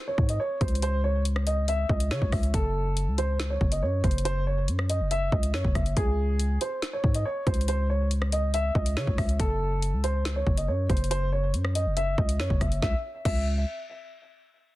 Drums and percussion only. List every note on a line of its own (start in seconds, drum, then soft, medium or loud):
0.18 kick loud
0.29 closed hi-hat loud
0.61 kick loud
0.61 closed hi-hat soft
0.68 closed hi-hat medium
0.75 closed hi-hat medium
0.82 closed hi-hat medium
1.25 closed hi-hat medium
1.36 cross-stick medium
1.47 closed hi-hat medium
1.68 closed hi-hat medium
1.89 kick medium
2.00 closed hi-hat loud
2.11 snare loud
2.22 kick medium
2.32 kick loud
2.32 cross-stick medium
2.32 open hi-hat soft
2.43 closed hi-hat medium
2.54 kick loud
2.54 closed hi-hat medium
2.97 closed hi-hat medium
3.18 closed hi-hat medium
3.40 snare loud
3.40 closed hi-hat medium
3.61 kick medium
3.72 closed hi-hat loud
4.04 kick loud
4.04 closed hi-hat soft
4.11 closed hi-hat medium
4.18 closed hi-hat medium
4.25 closed hi-hat medium
4.68 closed hi-hat medium
4.79 cross-stick medium
4.90 closed hi-hat medium
5.11 closed hi-hat medium
5.32 kick loud
5.43 closed hi-hat loud
5.54 snare loud
5.65 kick medium
5.75 kick loud
5.75 cross-stick medium
5.75 closed hi-hat medium
5.86 closed hi-hat medium
5.97 kick loud
5.97 closed hi-hat medium
6.40 closed hi-hat medium
6.61 closed hi-hat medium
6.82 snare loud
6.82 closed hi-hat medium
7.04 kick medium
7.15 closed hi-hat loud
7.47 kick loud
7.47 closed hi-hat soft
7.54 closed hi-hat medium
7.61 closed hi-hat medium
7.68 closed hi-hat medium
8.11 closed hi-hat medium
8.22 cross-stick medium
8.32 closed hi-hat medium
8.54 closed hi-hat medium
8.75 kick medium
8.86 closed hi-hat loud
8.97 snare loud
9.07 kick medium
9.18 kick loud
9.18 cross-stick loud
9.18 open hi-hat medium
9.29 closed hi-hat medium
9.40 kick loud
9.40 closed hi-hat medium
9.82 closed hi-hat medium
10.04 closed hi-hat medium
10.25 snare loud
10.25 closed hi-hat medium
10.47 kick medium
10.57 closed hi-hat loud
10.90 kick loud
10.90 closed hi-hat soft
10.97 closed hi-hat medium
11.04 closed hi-hat medium
11.11 closed hi-hat medium
11.54 closed hi-hat medium
11.65 cross-stick medium
11.75 closed hi-hat medium
11.97 closed hi-hat medium
12.18 kick medium
12.29 closed hi-hat loud
12.40 snare loud
12.50 kick medium
12.61 kick loud
12.61 cross-stick medium
12.61 closed hi-hat medium
12.72 closed hi-hat medium
12.82 kick loud
12.82 snare medium
13.25 kick loud
13.25 crash medium